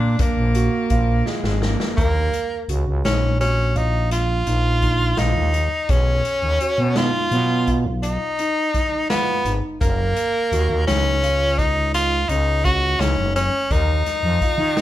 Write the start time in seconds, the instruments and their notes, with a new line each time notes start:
Already playing: fm bass A#2, grand piano D4, alto saxophone D4
0.19 alto saxophone A#3, grand piano D4, kick, closed hi-hat
0.37 fm bass A#1
0.55 grand piano F#4, closed hi-hat
0.90 fm bass A#1, grand piano F4, kick, closed hi-hat
1.26 alto saxophone G#3, snare
1.44 fm bass G#1, snare
1.62 alto saxophone A#3, grand piano D4, snare
1.80 snare
1.96 fm bass D#2, tenor saxophone A#3, grand piano A#4, kick, closed hi-hat
2.33 closed hi-hat
2.69 fm bass C#2, grand piano F#4, closed hi-hat
2.86 fm bass C#2
3.04 fm bass A#1, tenor saxophone C#4, grand piano D#4, snare, closed hi-hat
3.40 tenor saxophone C#4, grand piano F#4, snare, closed hi-hat
3.76 tenor saxophone D#4, grand piano F4, kick, closed hi-hat
4.11 tenor saxophone F4, snare, closed hi-hat
4.46 fm bass A#1, grand piano D#4, closed hi-hat
4.82 grand piano D#4, kick, closed hi-hat
5.17 fm bass A#1, tenor saxophone D#4, grand piano F4, snare, closed hi-hat
5.36 fm bass D#2
5.54 grand piano D#4, closed hi-hat
5.89 fm bass B1, tenor saxophone C#4, grand piano G#4, kick, closed hi-hat
6.25 closed hi-hat
6.42 fm bass D#2
6.61 grand piano F#4, closed hi-hat
6.78 fm bass B2
6.96 grand piano D#4, tenor saxophone F4, snare, closed hi-hat
7.31 fm bass B2, grand piano F#3, closed hi-hat
7.67 grand piano F4, kick, closed hi-hat
7.85 fm bass B1
8.03 tenor saxophone D#4, closed hi-hat
8.39 grand piano D#4, closed hi-hat
8.74 kick, snare, closed hi-hat
9.10 tenor saxophone B3, grand piano F4, snare, closed hi-hat
9.45 fm bass G#1, grand piano D#4, closed hi-hat
9.81 fm bass F#1, tenor saxophone A#3, grand piano A#4, kick, closed hi-hat
10.16 closed hi-hat
10.52 fm bass D#2, grand piano F#4, closed hi-hat
10.69 fm bass D#2
10.87 fm bass C#2, tenor saxophone C#4, grand piano D#4, snare, closed hi-hat
11.24 grand piano F4, closed hi-hat
11.58 tenor saxophone D#4, grand piano D#4, kick, closed hi-hat
11.94 tenor saxophone F4, closed hi-hat
12.29 fm bass C#2, grand piano C#4, tenor saxophone D#4, closed hi-hat
12.65 grand piano C#4, tenor saxophone F#4, kick, snare, closed hi-hat
13.00 fm bass C#2, tenor saxophone C#4, grand piano D#4, snare, closed hi-hat
13.17 fm bass F#1
13.36 tenor saxophone C#4, grand piano C#4, snare, closed hi-hat
13.70 fm bass D#2, tenor saxophone D#4, grand piano A#4, kick, closed hi-hat
14.06 snare, closed hi-hat
14.23 fm bass F2
14.41 grand piano F4, kick, snare, closed hi-hat
14.58 fm bass D#3
14.77 grand piano D#4, snare, closed hi-hat